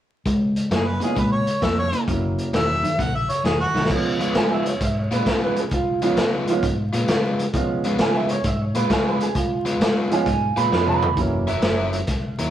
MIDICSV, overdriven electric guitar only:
0, 0, Header, 1, 2, 480
1, 0, Start_track
1, 0, Tempo, 454890
1, 270, Time_signature, 4, 2, 24, 8
1, 13191, End_track
2, 0, Start_track
2, 0, Title_t, "Overdriven electric guitar"
2, 0, Program_c, 0, 29
2, 274, Note_on_c, 0, 49, 71
2, 275, Note_on_c, 0, 56, 80
2, 722, Note_off_c, 0, 49, 0
2, 722, Note_off_c, 0, 56, 0
2, 752, Note_on_c, 0, 49, 74
2, 760, Note_on_c, 0, 58, 87
2, 1042, Note_off_c, 0, 49, 0
2, 1046, Note_off_c, 0, 58, 0
2, 1057, Note_on_c, 0, 49, 60
2, 1064, Note_on_c, 0, 58, 60
2, 1209, Note_off_c, 0, 49, 0
2, 1212, Note_off_c, 0, 58, 0
2, 1219, Note_on_c, 0, 49, 63
2, 1229, Note_on_c, 0, 56, 75
2, 1676, Note_off_c, 0, 49, 0
2, 1681, Note_off_c, 0, 56, 0
2, 1709, Note_on_c, 0, 49, 67
2, 1716, Note_on_c, 0, 58, 78
2, 2002, Note_off_c, 0, 49, 0
2, 2006, Note_off_c, 0, 58, 0
2, 2031, Note_on_c, 0, 49, 71
2, 2040, Note_on_c, 0, 58, 83
2, 2177, Note_off_c, 0, 49, 0
2, 2181, Note_off_c, 0, 58, 0
2, 2190, Note_on_c, 0, 42, 68
2, 2193, Note_on_c, 0, 49, 82
2, 2642, Note_off_c, 0, 42, 0
2, 2644, Note_off_c, 0, 49, 0
2, 2673, Note_on_c, 0, 42, 74
2, 2675, Note_on_c, 0, 51, 88
2, 2965, Note_off_c, 0, 42, 0
2, 2966, Note_off_c, 0, 51, 0
2, 2989, Note_on_c, 0, 42, 76
2, 2991, Note_on_c, 0, 51, 67
2, 3137, Note_off_c, 0, 42, 0
2, 3138, Note_off_c, 0, 51, 0
2, 3149, Note_on_c, 0, 42, 74
2, 3153, Note_on_c, 0, 49, 79
2, 3603, Note_off_c, 0, 42, 0
2, 3604, Note_off_c, 0, 49, 0
2, 3634, Note_on_c, 0, 42, 72
2, 3641, Note_on_c, 0, 51, 78
2, 3926, Note_off_c, 0, 42, 0
2, 3930, Note_off_c, 0, 51, 0
2, 3953, Note_on_c, 0, 42, 79
2, 3960, Note_on_c, 0, 51, 80
2, 4099, Note_off_c, 0, 42, 0
2, 4103, Note_off_c, 0, 51, 0
2, 4430, Note_on_c, 0, 65, 93
2, 4436, Note_on_c, 0, 59, 85
2, 4441, Note_on_c, 0, 49, 69
2, 4441, Note_on_c, 0, 56, 83
2, 4584, Note_off_c, 0, 49, 0
2, 4593, Note_off_c, 0, 59, 0
2, 4594, Note_off_c, 0, 56, 0
2, 4594, Note_off_c, 0, 65, 0
2, 4596, Note_on_c, 0, 49, 70
2, 4606, Note_on_c, 0, 59, 83
2, 4607, Note_on_c, 0, 56, 77
2, 4610, Note_on_c, 0, 65, 77
2, 4967, Note_off_c, 0, 49, 0
2, 4972, Note_off_c, 0, 59, 0
2, 4973, Note_off_c, 0, 56, 0
2, 4974, Note_off_c, 0, 65, 0
2, 5395, Note_on_c, 0, 65, 88
2, 5401, Note_on_c, 0, 56, 76
2, 5401, Note_on_c, 0, 59, 83
2, 5408, Note_on_c, 0, 49, 76
2, 5540, Note_off_c, 0, 49, 0
2, 5549, Note_off_c, 0, 56, 0
2, 5550, Note_off_c, 0, 59, 0
2, 5552, Note_on_c, 0, 49, 70
2, 5553, Note_off_c, 0, 65, 0
2, 5561, Note_on_c, 0, 56, 66
2, 5563, Note_on_c, 0, 59, 81
2, 5565, Note_on_c, 0, 65, 79
2, 5925, Note_off_c, 0, 49, 0
2, 5930, Note_off_c, 0, 56, 0
2, 5930, Note_off_c, 0, 59, 0
2, 5932, Note_off_c, 0, 65, 0
2, 6357, Note_on_c, 0, 65, 97
2, 6362, Note_on_c, 0, 59, 99
2, 6367, Note_on_c, 0, 56, 87
2, 6369, Note_on_c, 0, 49, 76
2, 6503, Note_off_c, 0, 49, 0
2, 6508, Note_off_c, 0, 56, 0
2, 6512, Note_off_c, 0, 59, 0
2, 6515, Note_on_c, 0, 49, 74
2, 6517, Note_off_c, 0, 65, 0
2, 6521, Note_on_c, 0, 56, 74
2, 6525, Note_on_c, 0, 59, 79
2, 6528, Note_on_c, 0, 65, 85
2, 6886, Note_off_c, 0, 49, 0
2, 6889, Note_off_c, 0, 56, 0
2, 6891, Note_off_c, 0, 59, 0
2, 6893, Note_off_c, 0, 65, 0
2, 7311, Note_on_c, 0, 65, 91
2, 7320, Note_on_c, 0, 59, 88
2, 7321, Note_on_c, 0, 56, 81
2, 7326, Note_on_c, 0, 49, 73
2, 7459, Note_off_c, 0, 49, 0
2, 7465, Note_off_c, 0, 56, 0
2, 7467, Note_off_c, 0, 59, 0
2, 7472, Note_on_c, 0, 49, 70
2, 7474, Note_off_c, 0, 65, 0
2, 7478, Note_on_c, 0, 56, 74
2, 7480, Note_on_c, 0, 59, 86
2, 7488, Note_on_c, 0, 65, 77
2, 7844, Note_off_c, 0, 49, 0
2, 7847, Note_off_c, 0, 56, 0
2, 7848, Note_off_c, 0, 59, 0
2, 7852, Note_off_c, 0, 65, 0
2, 8285, Note_on_c, 0, 65, 100
2, 8289, Note_on_c, 0, 56, 86
2, 8289, Note_on_c, 0, 59, 83
2, 8295, Note_on_c, 0, 49, 81
2, 8422, Note_off_c, 0, 49, 0
2, 8428, Note_off_c, 0, 56, 0
2, 8431, Note_off_c, 0, 59, 0
2, 8435, Note_on_c, 0, 49, 81
2, 8437, Note_off_c, 0, 65, 0
2, 8441, Note_on_c, 0, 56, 73
2, 8444, Note_on_c, 0, 59, 81
2, 8449, Note_on_c, 0, 65, 85
2, 8805, Note_off_c, 0, 49, 0
2, 8808, Note_off_c, 0, 56, 0
2, 8809, Note_off_c, 0, 59, 0
2, 8812, Note_off_c, 0, 65, 0
2, 9236, Note_on_c, 0, 65, 87
2, 9242, Note_on_c, 0, 59, 82
2, 9247, Note_on_c, 0, 56, 91
2, 9251, Note_on_c, 0, 49, 71
2, 9381, Note_off_c, 0, 49, 0
2, 9386, Note_off_c, 0, 56, 0
2, 9393, Note_off_c, 0, 59, 0
2, 9394, Note_on_c, 0, 49, 76
2, 9395, Note_off_c, 0, 65, 0
2, 9399, Note_on_c, 0, 56, 72
2, 9406, Note_on_c, 0, 59, 79
2, 9410, Note_on_c, 0, 65, 75
2, 9764, Note_off_c, 0, 49, 0
2, 9766, Note_off_c, 0, 56, 0
2, 9769, Note_off_c, 0, 59, 0
2, 9771, Note_off_c, 0, 65, 0
2, 10187, Note_on_c, 0, 65, 102
2, 10193, Note_on_c, 0, 59, 83
2, 10198, Note_on_c, 0, 49, 80
2, 10198, Note_on_c, 0, 56, 81
2, 10339, Note_off_c, 0, 49, 0
2, 10348, Note_off_c, 0, 56, 0
2, 10348, Note_off_c, 0, 59, 0
2, 10349, Note_off_c, 0, 65, 0
2, 10351, Note_on_c, 0, 49, 75
2, 10360, Note_on_c, 0, 56, 67
2, 10361, Note_on_c, 0, 59, 77
2, 10365, Note_on_c, 0, 65, 82
2, 10721, Note_off_c, 0, 49, 0
2, 10726, Note_off_c, 0, 56, 0
2, 10726, Note_off_c, 0, 59, 0
2, 10728, Note_off_c, 0, 65, 0
2, 11148, Note_on_c, 0, 65, 85
2, 11150, Note_on_c, 0, 59, 74
2, 11159, Note_on_c, 0, 56, 85
2, 11161, Note_on_c, 0, 49, 68
2, 11294, Note_off_c, 0, 49, 0
2, 11296, Note_off_c, 0, 56, 0
2, 11305, Note_off_c, 0, 59, 0
2, 11307, Note_on_c, 0, 49, 65
2, 11308, Note_on_c, 0, 56, 65
2, 11309, Note_off_c, 0, 65, 0
2, 11317, Note_on_c, 0, 59, 72
2, 11320, Note_on_c, 0, 65, 78
2, 11678, Note_off_c, 0, 49, 0
2, 11679, Note_off_c, 0, 56, 0
2, 11683, Note_off_c, 0, 59, 0
2, 11684, Note_off_c, 0, 65, 0
2, 12108, Note_on_c, 0, 70, 91
2, 12111, Note_on_c, 0, 64, 82
2, 12112, Note_on_c, 0, 61, 75
2, 12119, Note_on_c, 0, 54, 88
2, 12253, Note_off_c, 0, 54, 0
2, 12256, Note_off_c, 0, 61, 0
2, 12261, Note_off_c, 0, 64, 0
2, 12266, Note_on_c, 0, 54, 75
2, 12268, Note_off_c, 0, 70, 0
2, 12269, Note_on_c, 0, 61, 72
2, 12273, Note_on_c, 0, 64, 74
2, 12278, Note_on_c, 0, 70, 75
2, 12636, Note_off_c, 0, 54, 0
2, 12638, Note_off_c, 0, 61, 0
2, 12640, Note_off_c, 0, 64, 0
2, 12642, Note_off_c, 0, 70, 0
2, 13074, Note_on_c, 0, 70, 102
2, 13079, Note_on_c, 0, 64, 92
2, 13085, Note_on_c, 0, 61, 74
2, 13087, Note_on_c, 0, 54, 77
2, 13191, Note_off_c, 0, 54, 0
2, 13191, Note_off_c, 0, 61, 0
2, 13191, Note_off_c, 0, 64, 0
2, 13191, Note_off_c, 0, 70, 0
2, 13191, End_track
0, 0, End_of_file